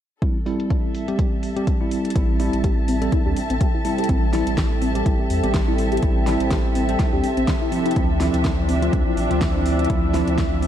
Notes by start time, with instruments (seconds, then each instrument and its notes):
0.22 tine electric piano G3 C4 E4, string section A4, kick, closed hi-hat
0.46 tine electric piano G3 C4 E4, open hi-hat
0.60 closed hi-hat
0.70 kick, closed hi-hat
0.77 string section E5
0.95 open hi-hat
1.08 tine electric piano G3 C4 G4, closed hi-hat
1.19 kick, closed hi-hat
1.34 string section A5
1.43 open hi-hat
1.56 tine electric piano G3 C4 G4, closed hi-hat
1.67 kick, closed hi-hat
1.81 tine electric piano G3 C4 E4
1.91 open hi-hat
2.05 closed hi-hat
2.10 closed hi-hat
2.15 sub bass A1, tine electric piano G3 C4 E4, ambient pad C4 A4 G5, synth arpeggio sound C4, kick, closed hi-hat
2.40 tine electric piano G3 C4 E4, synth arpeggio sound E4, open hi-hat
2.53 sub bass A1, closed hi-hat
2.64 synth arpeggio sound G4, kick, closed hi-hat
2.88 synth arpeggio sound C4, open hi-hat
3.02 tine electric piano G3 C4 A4, closed hi-hat
3.12 synth arpeggio sound E4, kick, closed hi-hat
3.26 sub bass D2, tine electric piano G3 C4 D4, synth arpeggio sound G4
3.36 open hi-hat
3.50 sub bass A1, synth arpeggio sound C4, closed hi-hat
3.61 kick, closed hi-hat
3.74 synth arpeggio sound E4
3.85 tine electric piano G3 C4 E4, open hi-hat
3.98 synth arpeggio sound G4, closed hi-hat
4.04 closed hi-hat
4.09 sub bass A1, tine electric piano G3 C4 E4, ambient pad C4 A4 G5, synth arpeggio sound C4, kick, closed hi-hat
4.33 tine electric piano G3 C4 E4, synth arpeggio sound E4, snare, open hi-hat
4.47 sub bass A1, closed hi-hat
4.58 synth arpeggio sound G4, kick, snare, closed hi-hat
4.82 synth arpeggio sound C4, open hi-hat
4.95 tine electric piano G3 C4 G4, closed hi-hat
5.06 sub bass A1, synth arpeggio sound E4, kick, closed hi-hat
5.19 synth arpeggio sound G4
5.30 sub bass E2, open hi-hat
5.44 sub bass A1, tine electric piano G3 C4 G4, synth arpeggio sound C4, closed hi-hat
5.54 kick, snare, closed hi-hat
5.68 tine electric piano G3 C4 E4, synth arpeggio sound E4
5.78 open hi-hat
5.92 synth arpeggio sound G4, closed hi-hat
5.97 closed hi-hat
6.03 sub bass A1, tine electric piano G3 C4 E4, synth arpeggio sound C4, ambient pad G4, kick, closed hi-hat
6.27 tine electric piano G3 C4 E4, synth arpeggio sound E4, snare, open hi-hat
6.40 sub bass A1, closed hi-hat
6.51 synth arpeggio sound G4, kick, snare, closed hi-hat
6.75 synth arpeggio sound C4, open hi-hat
6.89 tine electric piano G3 C4 A4, closed hi-hat
6.99 synth arpeggio sound E4, kick, snare, closed hi-hat
7.13 sub bass D2, tine electric piano G3 C4 D4, synth arpeggio sound G4
7.24 open hi-hat
7.37 sub bass A1, synth arpeggio sound C4, closed hi-hat
7.48 kick, snare, closed hi-hat
7.61 synth arpeggio sound E4
7.72 tine electric piano F3 C4 E4, ambient pad F3 E5, string section D4, open hi-hat
7.86 synth arpeggio sound E4, closed hi-hat
7.91 closed hi-hat
7.96 sub bass D2, tine electric piano F3 C4 E4, synth arpeggio sound C4, kick, closed hi-hat
8.20 tine electric piano F3 C4 E4, synth arpeggio sound D4, snare, open hi-hat
8.34 sub bass D2, closed hi-hat
8.45 synth arpeggio sound E4, kick, snare, closed hi-hat
8.69 synth arpeggio sound C4, open hi-hat
8.82 tine electric piano F3 C4 F4, closed hi-hat
8.93 sub bass D2, synth arpeggio sound D4, kick, closed hi-hat
9.07 synth arpeggio sound E4
9.17 sub bass A1, open hi-hat
9.31 sub bass D2, tine electric piano F3 C4 F4, synth arpeggio sound C4, closed hi-hat
9.41 kick, snare, closed hi-hat
9.55 tine electric piano F3 C4 E4, synth arpeggio sound D4
9.66 open hi-hat
9.79 synth arpeggio sound E4, closed hi-hat
9.85 closed hi-hat
9.90 sub bass D2, tine electric piano F3 C4 E4, synth arpeggio sound C4, kick, closed hi-hat
10.14 tine electric piano F3 C4 E4, synth arpeggio sound D4, snare, open hi-hat
10.28 sub bass D2, closed hi-hat
10.38 synth arpeggio sound E4, kick, snare, closed hi-hat
10.62 synth arpeggio sound C4, open hi-hat